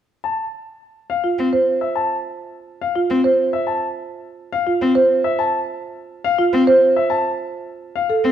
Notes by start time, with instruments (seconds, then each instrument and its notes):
0.24 grand piano A5
1.10 grand piano F5
1.24 marimba F4
1.39 cello C4
1.53 marimba C5
1.81 grand piano E5
1.96 grand piano A5
2.81 grand piano F5
2.96 marimba F4
3.10 cello C4
3.24 marimba C5
3.53 grand piano E5
3.67 grand piano A5
4.53 grand piano F5
4.67 marimba F4
4.82 cello C4
4.95 marimba C5
5.24 grand piano E5
5.39 grand piano A5
6.24 grand piano F5
6.38 marimba F4
6.53 cello C4
6.67 marimba C5
6.96 grand piano E5
7.10 grand piano A5
7.96 grand piano F5
8.10 marimba A4
8.25 cello C4